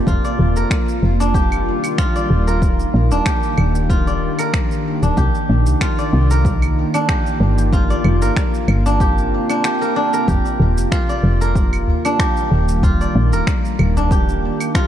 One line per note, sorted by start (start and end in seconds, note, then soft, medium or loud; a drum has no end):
0.00 5.13 A#3 medium
0.00 1.20 D4 medium
0.00 1.34 G4 medium
0.00 0.56 A#4 medium
0.00 0.24 D5 medium
0.07 0.17 F1 medium
0.07 2.60 D#3 medium
0.07 2.60 G3 medium
0.07 2.60 F4 medium
0.07 1.98 F4 medium
0.07 kick medium
0.07 shaker medium
0.25 2.09 D5 medium
0.25 shaker soft
0.39 0.58 D#1 loud
0.56 0.65 F1 medium
0.56 2.47 A#4 medium
0.56 shaker medium
0.71 finger snap medium
0.71 kick loud
0.71 shaker medium
0.89 shaker soft
1.02 1.73 F1 medium
1.20 3.11 D4 medium
1.20 shaker medium
1.34 3.26 G4 medium
1.34 kick loud
1.34 shaker medium
1.52 claves medium
1.52 shaker soft
1.84 claves medium
1.84 shaker medium
1.98 3.89 F4 loud
1.98 finger snap medium
1.98 kick medium
1.98 shaker medium
2.16 4.00 D5 medium
2.16 shaker soft
2.30 2.85 D#1 medium
2.47 4.39 A#4 medium
2.47 shaker medium
2.62 5.15 D#3 medium
2.62 5.15 D4 medium
2.62 5.15 G4 medium
2.62 kick medium
2.62 shaker soft
2.80 shaker soft
2.94 3.13 A#1 loud
3.11 3.20 D#1 medium
3.11 5.02 D4 medium
3.11 shaker medium
3.26 5.17 G4 medium
3.26 finger snap medium
3.26 kick medium
3.26 shaker soft
3.43 shaker soft
3.58 4.28 D#1 medium
3.58 claves medium
3.75 shaker medium
3.90 5.81 F4 medium
3.90 kick medium
3.90 shaker medium
4.07 5.92 D5 medium
4.07 shaker soft
4.39 6.30 A#4 medium
4.39 claves medium
4.39 shaker medium
4.54 finger snap medium
4.54 kick medium
4.54 shaker soft
4.71 shaker soft
5.03 5.12 D#1 medium
5.03 6.94 D4 medium
5.03 shaker medium
5.17 5.28 C2 medium
5.17 7.70 D#3 medium
5.17 10.24 A#3 medium
5.17 7.70 D4 medium
5.17 12.79 F4 medium
5.17 7.09 G4 medium
5.17 kick medium
5.17 shaker soft
5.35 shaker soft
5.49 5.68 A#1 medium
5.66 5.76 C2 medium
5.66 shaker medium
5.81 7.73 F4 loud
5.81 finger snap medium
5.81 kick medium
5.81 shaker medium
5.98 7.83 D5 medium
5.98 shaker soft
6.13 6.84 C2 loud
6.31 8.21 A#4 medium
6.31 shaker medium
6.45 kick loud
6.45 shaker soft
6.62 claves medium
6.62 shaker soft
6.94 8.85 D4 medium
6.94 claves medium
6.94 shaker medium
7.09 9.00 G4 medium
7.09 finger snap medium
7.09 kick medium
7.09 shaker soft
7.27 shaker soft
7.40 7.95 G1 loud
7.58 shaker medium
7.72 10.25 C3 medium
7.72 10.25 F4 loud
7.72 kick medium
7.72 shaker soft
7.90 9.75 D5 medium
7.90 shaker soft
8.04 8.23 F1 loud
8.04 claves medium
8.21 8.31 G1 medium
8.21 9.81 A#4 medium
8.21 shaker medium
8.36 finger snap medium
8.36 kick loud
8.36 shaker medium
8.54 shaker soft
8.68 9.39 G1 medium
8.68 claves medium
8.86 9.49 D4 medium
8.86 shaker medium
9.00 9.64 G4 medium
9.00 kick loud
9.00 shaker medium
9.18 shaker soft
9.49 9.96 D4 medium
9.49 claves medium
9.49 shaker medium
9.64 10.28 G4 medium
9.64 finger snap loud
9.64 shaker medium
9.81 10.13 A#4 medium
9.81 shaker soft
9.96 12.05 D4 medium
10.13 11.41 A#4 medium
10.13 shaker medium
10.28 10.39 F1 medium
10.28 14.87 D#3 medium
10.28 12.81 G3 medium
10.28 14.87 A#3 medium
10.28 12.19 G4 medium
10.28 kick medium
10.28 shaker soft
10.46 shaker soft
10.60 10.79 D#1 loud
10.77 10.86 F1 medium
10.77 shaker medium
10.92 12.83 F4 medium
10.92 finger snap medium
10.92 kick loud
10.92 shaker medium
11.09 12.94 D5 medium
11.09 shaker soft
11.23 11.94 F1 medium
11.41 13.32 A#4 medium
11.41 shaker medium
11.55 kick loud
11.55 shaker medium
11.73 claves medium
11.73 shaker soft
11.87 udu medium
12.05 13.96 D4 medium
12.05 claves medium
12.05 shaker medium
12.19 14.11 G4 medium
12.19 finger snap loud
12.19 kick loud
12.19 shaker medium
12.37 shaker soft
12.51 13.06 D#1 medium
12.69 shaker medium
12.82 14.87 D4 medium
12.82 14.75 F4 loud
12.82 14.87 G4 medium
12.82 kick medium
12.82 udu medium
12.82 shaker medium
13.01 14.86 D5 medium
13.01 shaker soft
13.15 13.34 A#1 loud
13.33 13.42 D#1 medium
13.33 14.87 A#4 medium
13.33 shaker medium
13.47 finger snap medium
13.47 kick loud
13.47 shaker medium
13.65 shaker soft
13.79 14.50 D#1 loud
13.79 claves medium
13.96 14.87 D4 medium
13.96 udu medium
13.96 shaker medium
14.11 14.87 G4 medium
14.11 kick loud
14.11 shaker medium
14.29 shaker soft
14.60 claves medium
14.60 shaker medium
14.75 14.87 F4 loud
14.75 finger snap medium
14.75 kick loud
14.75 shaker medium